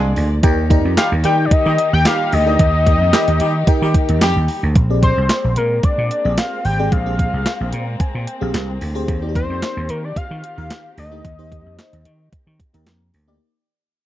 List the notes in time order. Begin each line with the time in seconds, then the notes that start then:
Already playing: C2 G#3 A#3 D4 F4 G#4 D5
0.16 D2, open hi-hat
0.43 D#2 D#3 A#3 D#4 G4 A#4 D5 G5, kick, closed hi-hat
0.70 D#4 G4 A#4 D5 A#5, kick, closed hi-hat
0.85 F2
0.97 G3 D#4 G4 F5, snare, clap, closed hi-hat
1.12 D#2
1.24 D#3 G3 D#4 G4 A#4 D5 G5, closed hi-hat
1.45 D5
1.51 D#5, muted slap bass stroke, kick, closed hi-hat
1.66 D#3 G3 D#4 G4
1.78 closed hi-hat
1.93 D#2 G5
2.05 G3 D#4 G4 F5, snare, clap, closed hi-hat
2.32 D2 D#5, open hi-hat
2.46 D#4 G4 A#4 D5 G5
2.59 D#2, kick, closed hi-hat
2.86 D#4 G4 A#4 D5 G5, kick, closed hi-hat
3.01 F2
3.13 G3 D#4 G4 A#4 D5 G5, snare, clap, closed hi-hat
3.28 D#2, closed hi-hat
3.40 D#3 G3 D#4 G4, closed hi-hat
3.67 D#4 G4 A#4 D#5 G5, muted slap bass stroke, kick, closed hi-hat
3.82 D#3 G3 D#4 G4
3.94 kick, closed hi-hat
4.09 D#2, closed hi-hat
4.21 F2 G3 D#4 G4, snare, clap, closed hi-hat
4.36 D#2
4.48 open hi-hat
4.63 D2
4.75 A#1 G#3 A#3 C4, kick, closed hi-hat
4.90 C4 G4 G#4 D5
5.03 C5, kick, closed hi-hat
5.17 C2
5.29 snare, clap, closed hi-hat
5.44 A#1
5.56 A#2 A#4, closed hi-hat
5.83 D5, muted slap bass stroke, kick, closed hi-hat
5.98 A#2
6.11 closed hi-hat
6.25 A#1 C4 G4 G#4 D5
6.38 F5, snare, clap, closed hi-hat
6.65 G#1 G5, open hi-hat
6.79 C4 G4 G#4 D5
6.92 A#1 F5, kick, closed hi-hat
7.06 C4 G4 G#4 F5
7.19 kick, closed hi-hat
7.33 C2
7.46 snare, clap, closed hi-hat
7.61 A#1
7.73 A#2 A#5, closed hi-hat
8.00 G#5, muted slap bass stroke, kick, closed hi-hat
8.15 A#2
8.27 G5, closed hi-hat
8.41 A#1 C4 G4 G#4 F5
8.54 C2 F5, snare, clap, closed hi-hat
8.81 D2, open hi-hat
8.95 C4 G4 G#4 C5
9.08 D#2 D#3 G4, kick, closed hi-hat
9.22 A#3 D#4 F#4 D5
9.29 G4
9.35 C5, kick, closed hi-hat
9.50 F2
9.62 snare, clap, closed hi-hat
9.77 D#2
9.89 D#3 A#4, closed hi-hat
10.04 D5
10.16 F5, muted slap bass stroke, kick, closed hi-hat
10.31 D#3
10.44 closed hi-hat
10.57 D#2 A#3 D#4 G4 A#4
10.70 snare, clap, closed hi-hat
10.98 D2 D#5, open hi-hat
11.11 A#3 D#4 G4 D#5
11.25 D#2, kick, closed hi-hat
11.38 A#3 D#4 G4 C5
11.52 kick, closed hi-hat
11.66 F2
11.79 snare, clap, closed hi-hat
11.93 D#2, closed hi-hat
12.05 D#3, closed hi-hat
12.33 muted slap bass stroke, kick, closed hi-hat
12.47 D#3
12.60 kick, closed hi-hat
12.73 D#2 A#3 D#4 G4 A#4, closed hi-hat
12.86 F2, snare, clap, closed hi-hat
13.14 D2, open hi-hat
13.27 A#3 D#4 G4 D5